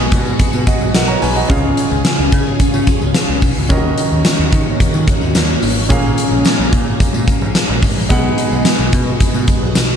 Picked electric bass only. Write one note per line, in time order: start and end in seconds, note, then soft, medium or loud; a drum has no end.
0.00 0.14 B1 medium
0.12 0.33 B2 medium
0.40 muted picked electric bass stroke soft
0.54 0.64 B2 medium
0.81 0.91 B1 medium
0.95 1.16 B1 medium
1.22 1.43 B1 loud
1.50 1.70 C#2 loud
1.91 2.02 C#2 loud
2.19 2.29 C#2 medium
2.33 2.53 C#3 loud
2.60 muted picked electric bass stroke soft
2.74 2.84 C#3 medium
3.01 3.12 C#2 medium
3.29 3.39 C#2 medium
3.42 3.53 B1 medium
3.57 3.67 C#2 medium
3.70 3.91 D#2 loud
4.12 4.22 D#2 medium
4.39 4.49 D#2 medium
4.53 4.73 D#3 medium
4.80 muted picked electric bass stroke soft
4.95 5.05 D#3 medium
5.22 5.32 D#2 medium
5.35 5.56 D#2 medium
5.63 5.90 G#1 medium
5.90 6.11 A#1 loud
6.31 6.42 A#1 loud
6.59 6.69 A#1 loud
6.73 6.93 A#2 medium
7.00 muted picked electric bass stroke soft
7.14 7.24 A#2 medium
7.42 7.52 A#1 medium
7.69 7.79 A#1 loud
7.83 7.93 G#1 medium
7.96 8.07 A#1 medium
8.10 8.31 B1 loud
8.52 8.62 B1 medium
8.79 8.90 B1 medium
8.93 9.14 B2 loud
9.21 muted picked electric bass stroke soft
9.35 9.45 B2 loud
9.62 9.72 B1 medium
9.76 9.96 B1 medium